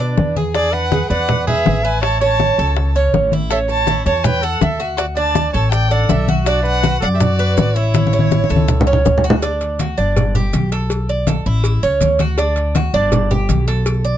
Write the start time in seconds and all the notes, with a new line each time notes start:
Already playing: B2 D4 B4
0.00 D4, high conga
0.18 E2, high bongo, low bongo, high conga
0.36 G#4, high conga
0.54 D4 G#4 D5, high bongo, high conga
0.72 B4 F#5, high bongo, high conga
0.92 G#4, high bongo, high conga
1.10 E2 B4 D5 F#5, high bongo, high conga
1.29 high bongo, high conga, low conga
1.47 G#4 B4 E5, high bongo, high conga, low conga
1.66 A1, high bongo, low bongo, high conga
1.84 E4 B4 G#5, high conga
2.02 C#5 A5, high bongo, high conga
2.20 C#4 C#5 A5, high bongo, high conga
2.40 high bongo, high conga
2.58 C#2 A4, high bongo, high conga
2.77 high bongo, high conga
2.95 C#4, high bongo, high conga
3.13 A1, high bongo, low bongo, high conga
3.32 E4, high conga
3.50 C#4 A4 E5, high bongo, high conga, maracas
3.69 C#5 A5, high bongo, high conga, maracas
3.87 E4, high bongo, high conga, maracas
4.06 E2 C#5 A5, high bongo, high conga, maracas
4.24 B4 G5, high bongo, high conga, low conga, maracas
4.42 A4 F#5, high bongo, high conga, maracas
4.61 D2 A4 E5, high bongo, low bongo, high conga, maracas
4.80 F#4, high conga, maracas
4.97 F#4 D5, high bongo, high conga, maracas
5.16 D4 D5 A5, high bongo, high conga, maracas
5.35 high bongo, high conga, maracas
5.53 A1 A4 C#5 A5, high bongo, high conga, maracas
5.72 D5 G5, high bongo, high conga, maracas
5.89 D4 A4 F#5, high bongo, high conga, maracas
6.08 B1 A4 E5, high bongo, low bongo, high conga, maracas
6.28 F#4, high conga, maracas
6.45 D4 F#4 D5, high bongo, maracas
6.63 B4 F#5, high bongo, high conga, maracas
6.83 F#4, high bongo, high conga, maracas
7.01 F#2 A4 D5 F#5, high bongo, high conga, maracas
7.13 G4 E5
7.19 F#4 D5, high bongo, high conga, low conga, maracas
7.39 B4, high bongo, high conga, maracas
7.57 A1, high bongo, low bongo, high conga, maracas
7.75 E4 C#5, high conga, maracas
7.94 high bongo, high conga, maracas
8.07 high conga
8.13 C#4, high bongo, maracas
8.19 high conga
8.31 high bongo, high conga, maracas
8.44 high conga
8.50 C#2 A4, high bongo, maracas
8.56 high conga
8.68 high bongo, low conga, maracas
8.81 low conga
8.87 C#4, high bongo, maracas
8.93 low conga
9.05 D2, high bongo, low bongo, low conga, maracas
9.18 low conga
9.24 F#4, maracas
9.30 low conga
9.42 D4, cowbell, high conga, maracas
9.61 cowbell, high conga, maracas
9.79 F#4, cowbell, high conga, maracas
9.98 G1 D4, high conga, maracas
10.16 cowbell, high conga, low conga, maracas
10.35 G4, high conga, low conga, maracas
10.53 B1, cowbell, high conga, maracas
10.72 A4, cowbell, high conga, maracas
10.90 cowbell, high conga, maracas
11.09 D5, high conga, maracas
11.27 A4, cowbell, high conga, maracas
11.46 A1 E4, high conga, maracas
11.64 cowbell, high conga, maracas
11.83 C#2 C#4, high conga, maracas
12.01 D2, cowbell, high conga, maracas
12.19 F#4, cowbell, high conga, maracas
12.38 D4, cowbell, high conga, maracas
12.56 cowbell, high conga, maracas
12.75 F#4, cowbell, high conga, maracas
12.94 G1 D4, high conga, maracas
13.12 cowbell, high conga, low conga, maracas
13.31 G4, high conga, low conga, maracas
13.49 B1, cowbell, high conga, maracas
13.68 A4, cowbell, high conga, maracas
13.86 cowbell, high conga, maracas
14.05 D5, high conga, maracas